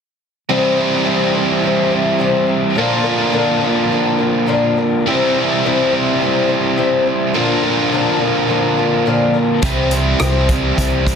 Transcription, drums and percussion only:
9.62 kick loud
9.62 closed hi-hat medium
9.91 closed hi-hat soft
10.20 cross-stick loud
10.20 closed hi-hat medium
10.49 kick medium
10.49 closed hi-hat medium
10.78 kick medium
10.78 closed hi-hat medium
11.07 kick medium
11.07 closed hi-hat medium

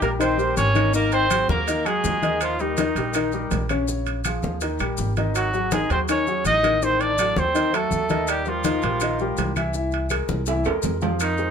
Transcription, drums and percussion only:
0.02 high conga soft
0.02 high timbale medium
0.02 maracas soft
0.21 high conga soft
0.21 high timbale medium
0.21 claves medium
0.21 maracas medium
0.39 high conga soft
0.39 maracas soft
0.57 high conga medium
0.57 high timbale medium
0.57 maracas medium
0.75 high conga medium
0.75 high timbale medium
0.75 claves medium
0.75 maracas soft
0.94 high conga soft
0.94 maracas medium
1.12 high conga soft
1.12 high timbale medium
1.12 maracas soft
1.31 high conga medium
1.31 high timbale medium
1.31 claves medium
1.31 maracas medium
1.49 high conga medium
1.49 maracas soft
1.68 high conga soft
1.68 high timbale medium
1.68 maracas medium
1.86 high conga soft
1.86 high timbale medium
1.86 claves medium
1.86 maracas soft
2.04 high conga medium
2.04 low timbale medium
2.04 maracas medium
2.22 high conga medium
2.22 high timbale medium
2.22 maracas soft
2.41 high conga soft
2.41 high timbale medium
2.41 claves medium
2.41 maracas medium
2.59 high conga soft
2.59 maracas soft
2.77 high conga medium
2.77 high timbale medium
2.77 maracas medium
2.96 high conga soft
2.96 high timbale medium
2.96 maracas soft
3.14 high conga soft
3.14 high timbale medium
3.14 claves medium
3.14 maracas medium
3.32 high conga soft
3.32 maracas soft
3.51 high conga medium
3.51 high timbale medium
3.51 low timbale medium
3.51 maracas medium
3.69 high conga medium
3.69 high timbale medium
3.69 claves medium
3.69 maracas soft
3.88 high conga soft
3.88 maracas medium
4.06 high conga soft
4.06 high timbale medium
4.06 maracas soft
4.24 high conga medium
4.24 high timbale medium
4.24 claves medium
4.24 maracas medium
4.42 high conga medium
4.42 maracas soft
4.61 high conga soft
4.61 high timbale medium
4.61 maracas medium
4.79 high conga soft
4.79 high timbale medium
4.79 claves medium
4.79 maracas soft
4.97 high conga medium
4.97 maracas medium
5.16 high conga medium
5.16 high timbale medium
5.16 maracas soft
5.35 high conga soft
5.35 high timbale medium
5.35 claves medium
5.35 maracas medium
5.54 high conga soft
5.54 maracas soft
5.71 high conga loud
5.71 high timbale medium
5.71 maracas medium
5.90 high conga soft
5.90 high timbale medium
5.90 maracas soft
6.08 high conga soft
6.08 high timbale medium
6.08 claves medium
6.08 maracas medium
6.27 high conga soft
6.27 maracas soft
6.45 high conga medium
6.45 high timbale medium
6.45 maracas medium
6.64 high conga medium
6.64 high timbale medium
6.64 claves medium
6.64 maracas soft
6.82 high conga soft
6.82 maracas medium
7.00 high conga soft
7.00 high timbale medium
7.00 maracas soft
7.18 high conga medium
7.18 high timbale medium
7.18 claves medium
7.18 maracas medium
7.36 high conga medium
7.36 maracas soft
7.55 high conga soft
7.55 high timbale medium
7.55 maracas medium
7.73 high conga soft
7.73 high timbale medium
7.73 claves medium
7.73 maracas soft
7.91 high conga medium
7.91 maracas medium
8.09 high conga medium
8.09 high timbale medium
8.09 maracas soft
8.27 high conga soft
8.27 high timbale medium
8.27 claves medium
8.27 maracas medium
8.45 high conga soft
8.45 maracas soft
8.64 high conga medium
8.64 high timbale medium
8.64 maracas medium
8.82 high conga soft
8.82 high timbale medium
8.82 maracas soft
9.00 high conga soft
9.00 high timbale medium
9.00 claves medium
9.00 maracas medium
9.19 high conga soft
9.19 maracas soft
9.37 high conga medium
9.37 high timbale medium
9.37 low timbale medium
9.37 maracas medium
9.56 high conga medium
9.56 high timbale medium
9.56 claves medium
9.56 maracas soft
9.74 high conga soft
9.74 maracas medium
9.92 high conga soft
9.92 high timbale medium
9.92 maracas soft
10.10 high conga medium
10.10 high timbale medium
10.10 claves medium
10.10 maracas medium
10.28 high conga medium
10.28 maracas soft
10.46 high conga soft
10.46 high timbale medium
10.46 maracas medium
10.64 high conga soft
10.64 high timbale medium
10.64 claves medium
10.64 maracas soft
10.82 high conga medium
10.82 low timbale medium
10.82 maracas medium
11.01 high conga medium
11.01 low timbale medium
11.01 maracas soft
11.20 high conga soft
11.20 high timbale medium
11.20 claves medium
11.20 maracas medium
11.38 high conga soft
11.38 maracas soft

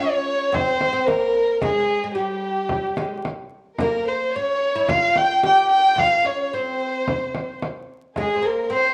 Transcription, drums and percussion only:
0.54 frame drum medium
0.81 frame drum medium
1.08 frame drum medium
1.62 frame drum medium
2.69 frame drum medium
2.97 frame drum medium
3.25 frame drum medium
3.79 frame drum medium
4.88 frame drum medium
5.16 frame drum medium
5.43 frame drum medium
5.98 frame drum medium
7.07 frame drum medium
7.35 frame drum medium
7.62 frame drum medium
8.16 frame drum medium

